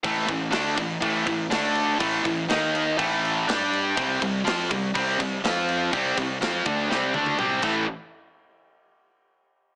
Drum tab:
CC |x-x-x-x-x-x-x-x-|x-x-x-x-x-x-x-x-|x-x-x-x-x-x-x-x-|x-x-x-x-------x-|
SD |----o-------o---|----o-------o---|----o-------o---|----o---o-------|
T1 |----------------|----------------|----------------|----------oo----|
T2 |----------------|----------------|----------------|------------o---|
BD |o-o---o-o-o-----|o-o-----o-------|o-o---o-o-o-----|o-o---o-------o-|

CC |----------------|
SD |----------------|
T1 |----------------|
T2 |----------------|
BD |----------------|